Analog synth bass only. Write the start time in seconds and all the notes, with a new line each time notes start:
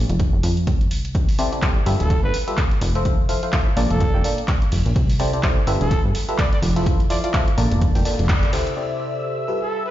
0.09 F1
0.33 F1
0.43 F2
0.91 C2
1.86 G1
2.00 D1
2.24 G1
2.81 F1
3.77 A#1
3.90 F1
4.14 F1
4.72 F1
4.86 A#1
4.96 C2
5.67 G1
5.81 D1
6.05 G1
6.62 F1
7.58 A#1
7.71 F1
7.95 F1
8.19 F1
8.53 D2